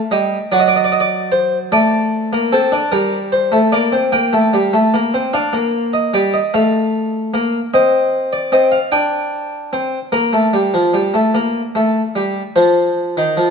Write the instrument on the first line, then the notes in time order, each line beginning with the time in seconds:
harpsichord
0.11 G3 D#5
0.52 F#3 D5
0.60 D#5
0.68 D5
0.76 D#5
0.84 D5
0.92 D#5
1.00 D5
1.32 C5
1.72 A3 D5
2.33 A#3
2.52 C4 A4
2.72 D4
2.92 G3 A#4
3.32 C5
3.52 A3
3.72 A#3 D5
3.92 C4
4.12 A#3 G5
4.33 A3
4.53 G3
4.73 A3
4.94 A#3
5.14 C4
5.33 D4 F5
5.53 A#3
5.93 D#5
6.14 G3 D5
6.34 D#5
6.54 A3 F5
7.34 A#3
7.74 C4 D#5
8.33 D5
8.52 C4 D#5
8.72 F5
8.92 D4 G5
9.73 C4
10.12 A#3 A#4
10.33 A3
10.53 G3
10.74 F3
10.94 G3
11.14 A3
11.34 A#3
11.75 A3
12.16 G3
12.56 F3 C5
13.17 D#3
13.37 F3